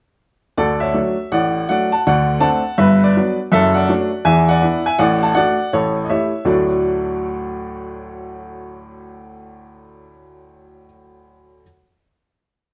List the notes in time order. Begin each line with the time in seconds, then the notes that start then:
0.57 D2 D3 A4 D5
0.80 C#5 E5
0.94 F#3 A3 D4
1.32 A1 A2 D5 F#5
1.69 F#3 A3 D4 D5 F#5
1.92 F#5 A5
2.07 D2 D3 D5 F#5
2.40 A3 C4 D4 F#5 A5
2.78 G1 G2 B4 E5
3.04 B4 D5
3.17 F#3 B3 D4
3.52 F#1 F#2 A4 E5
3.74 D5 F#5
3.89 F#3 A3 D4
4.25 E2 E3 E5 G#5
4.49 D5 F#5
4.62 B3 D4 E4
4.86 E5 G#5
4.99 A1 A2 D5 F#5
5.23 F#5 A5
5.35 A3 D4 F#4 D5 F#5
5.73 A1 A2 A4 C#5
6.05 D#5
6.10 A3 E4 G4 C#5 E5
6.45 D2 A2 F#3 A3 D4 F#4 D5